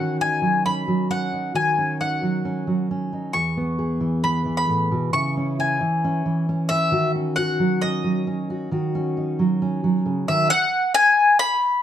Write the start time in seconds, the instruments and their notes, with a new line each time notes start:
Already playing: steel-string acoustic guitar D#3 F#4, mandolin F#5
0.00 steel-string acoustic guitar C#4
0.21 steel-string acoustic guitar D#4, mandolin G#5
0.42 steel-string acoustic guitar F#3
0.66 steel-string acoustic guitar C#4, mandolin B5
0.88 steel-string acoustic guitar F#3
1.10 steel-string acoustic guitar C#4, mandolin F#5
1.33 steel-string acoustic guitar D#4
1.54 steel-string acoustic guitar D#3 F#4, mandolin G#5
1.78 steel-string acoustic guitar C#4
2.01 steel-string acoustic guitar D#4, mandolin F#5
2.22 steel-string acoustic guitar F#3
2.45 steel-string acoustic guitar C#4
2.67 steel-string acoustic guitar F#3
2.91 steel-string acoustic guitar C#4
3.13 steel-string acoustic guitar D#4
3.33 steel-string acoustic guitar E2 G#4, mandolin C#6
3.57 steel-string acoustic guitar B3
3.79 steel-string acoustic guitar G#4
4.00 steel-string acoustic guitar E3
4.24 steel-string acoustic guitar B3, mandolin B5
4.45 steel-string acoustic guitar E3
4.57 mandolin B5
4.68 steel-string acoustic guitar A2
4.91 steel-string acoustic guitar B2
5.13 steel-string acoustic guitar C#3 E4, mandolin C#6
5.37 steel-string acoustic guitar C#4
5.59 steel-string acoustic guitar E4, mandolin G#5
5.81 steel-string acoustic guitar E3
6.04 steel-string acoustic guitar C#4
6.26 steel-string acoustic guitar E3
6.49 steel-string acoustic guitar C#4
6.69 steel-string acoustic guitar E4, mandolin E5
6.92 steel-string acoustic guitar D#3 F#4
7.15 steel-string acoustic guitar C#4
7.36 steel-string acoustic guitar F#4, mandolin F#5
7.60 steel-string acoustic guitar F#3
7.82 steel-string acoustic guitar C#4, mandolin D#5
8.04 steel-string acoustic guitar F#3
8.27 steel-string acoustic guitar C#4
8.50 steel-string acoustic guitar F#4
8.71 steel-string acoustic guitar D#3 F#4
8.95 steel-string acoustic guitar C#4
9.17 steel-string acoustic guitar D#4
9.39 steel-string acoustic guitar F#3
9.62 steel-string acoustic guitar C#4
9.84 steel-string acoustic guitar F#3
10.06 steel-string acoustic guitar C#3
10.28 steel-string acoustic guitar D#3, mandolin E5
10.50 mandolin F#5
10.94 mandolin G#5
11.39 mandolin B5